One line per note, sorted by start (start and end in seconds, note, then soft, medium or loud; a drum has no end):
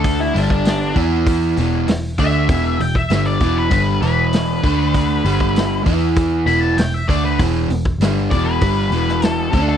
0.00 0.31 D2 medium
0.00 0.33 D3 medium
0.00 0.34 A3 medium
0.00 0.34 D4 medium
0.00 0.20 A4 medium
0.04 kick loud
0.04 open hi-hat medium
0.20 0.35 E4 medium
0.34 0.92 G1 medium
0.34 0.95 G2 medium
0.34 0.94 D3 medium
0.34 0.95 G3 medium
0.34 open hi-hat medium
0.38 0.96 D4 medium
0.50 kick medium
0.65 snare medium
0.65 open hi-hat medium
0.95 1.53 E2 medium
0.95 1.56 E3 medium
0.95 1.56 B3 medium
0.95 1.56 E4 medium
0.95 kick medium
0.95 open hi-hat soft
1.26 kick medium
1.26 open hi-hat medium
1.57 1.86 E1 medium
1.57 1.86 E2 medium
1.57 1.87 B2 medium
1.57 1.88 E3 medium
1.57 open hi-hat soft
1.88 2.16 E1 medium
1.88 2.12 E2 medium
1.88 2.12 B2 medium
1.88 snare loud
1.88 open hi-hat medium
2.18 2.47 D2 medium
2.18 2.48 D3 medium
2.18 2.48 A3 medium
2.18 2.48 D4 medium
2.18 2.78 E5 medium
2.18 kick medium
2.18 open hi-hat soft
2.49 2.77 E1 medium
2.49 2.78 E2 medium
2.49 2.79 B2 medium
2.49 2.79 E3 medium
2.49 kick loud
2.49 open hi-hat medium
2.79 3.08 E1 medium
2.79 3.04 E2 medium
2.79 3.04 B2 medium
2.79 2.95 G5 medium
2.79 open hi-hat soft
2.95 3.25 E5 medium
2.95 kick medium
3.10 3.39 G1 medium
3.10 3.40 G2 medium
3.10 3.40 D3 medium
3.10 3.40 G3 medium
3.10 snare loud
3.10 open hi-hat medium
3.26 3.56 D5 medium
3.40 3.69 E1 medium
3.40 3.70 E2 medium
3.40 3.70 B2 medium
3.40 3.71 E3 medium
3.40 kick medium
3.40 open hi-hat soft
3.58 4.01 B4 medium
3.70 4.00 G1 medium
3.70 4.00 G2 medium
3.70 4.01 D3 medium
3.70 4.01 G3 medium
3.70 kick loud
3.70 open hi-hat medium
4.02 4.59 E1 medium
4.02 4.62 E2 medium
4.02 4.62 B2 medium
4.02 4.63 E3 medium
4.02 5.82 B4 medium
4.02 open hi-hat soft
4.33 snare loud
4.33 open hi-hat medium
4.63 5.21 D2 medium
4.63 5.24 D3 medium
4.63 5.24 A3 medium
4.63 5.24 D4 medium
4.63 kick medium
4.63 open hi-hat soft
4.94 kick loud
4.94 open hi-hat medium
5.24 5.82 G1 medium
5.24 5.84 G2 medium
5.24 5.85 D3 medium
5.24 5.86 G3 medium
5.24 open hi-hat soft
5.40 kick medium
5.56 snare loud
5.56 open hi-hat medium
5.85 6.43 E2 medium
5.85 6.46 E3 medium
5.85 6.46 B3 medium
5.85 6.46 E4 medium
5.85 kick medium
5.85 open hi-hat soft
6.16 kick loud
6.16 open hi-hat medium
6.46 6.75 E1 medium
6.46 6.76 E2 medium
6.46 6.76 B2 medium
6.46 6.77 E3 medium
6.46 6.60 B5 medium
6.46 open hi-hat soft
6.60 6.76 A5 medium
6.77 7.06 E1 medium
6.77 7.02 E2 medium
6.77 7.02 B2 medium
6.77 6.94 G5 medium
6.77 snare loud
6.77 open hi-hat medium
6.94 7.08 E5 medium
7.08 7.37 D2 medium
7.08 7.38 D3 medium
7.08 7.38 A3 medium
7.08 7.38 D4 medium
7.08 7.23 D5 medium
7.08 kick medium
7.08 open hi-hat soft
7.25 7.39 B4 medium
7.39 7.67 E1 medium
7.39 7.69 E2 medium
7.39 7.69 B2 medium
7.39 7.69 E3 loud
7.39 kick loud
7.39 open hi-hat medium
7.69 7.98 E1 medium
7.69 7.94 E2 medium
7.69 7.95 B2 medium
7.69 open hi-hat soft
7.85 kick medium
7.99 8.28 G1 medium
7.99 8.30 G2 medium
7.99 8.31 D3 medium
7.99 8.31 G3 medium
7.99 snare medium
7.99 open hi-hat medium
8.31 8.60 E1 medium
8.31 8.61 E2 medium
8.31 8.61 B2 medium
8.31 8.62 E3 medium
8.31 8.44 D5 medium
8.31 kick medium
8.31 open hi-hat soft
8.45 9.26 B4 medium
8.61 8.90 G1 medium
8.61 8.92 G2 medium
8.61 8.92 D3 medium
8.61 8.92 G3 medium
8.61 kick loud
8.61 open hi-hat medium
8.91 9.48 E1 medium
8.91 9.52 E2 medium
8.91 9.54 B2 medium
8.91 9.55 E3 medium
8.91 open hi-hat soft
9.08 snare soft
9.22 9.64 A4 medium
9.22 snare loud
9.22 open hi-hat medium
9.53 9.77 D2 medium
9.53 9.77 D3 medium
9.53 9.77 A3 medium
9.53 9.77 D4 medium
9.53 kick medium
9.53 open hi-hat soft
9.69 9.77 A4 medium